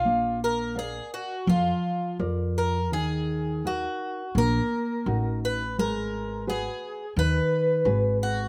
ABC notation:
X:1
M:4/4
L:1/8
Q:1/4=85
K:Ebm
V:1 name="Twelve-string acoustic guitar"
F B A G F2 z B | A2 G2 B3 c | B2 A2 c3 G |]
V:2 name="Nylon-string guitar"
B,2 [B=df]2 F,2 [FBd]2 | E,2 [EGB]2 B,2 [EG]2 | A,2 [GAc]2 E,2 [GAc]2 |]
V:3 name="Upright bass" clef=bass
B,,,4 F,, z F,,2 | E,,4 B,,, z =A,,,2 | A,,,4 E,, z A,,,2 |]